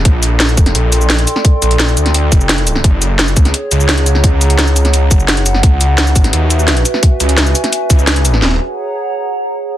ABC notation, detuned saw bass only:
X:1
M:4/4
L:1/8
Q:1/4=172
K:Ebphr
V:1 name="Detuned saw bass" clef=bass
B,,,3 =F,,, B,,,3 z | z B,,,2 =D,,2 =F,,,3 | G,,,3 D,, z D,,3- | D,,4- D,, G,,,3 |
D,,3 A,,, E,,3 z | z D,, D,, z2 D,,3 | E,,, z6 z |]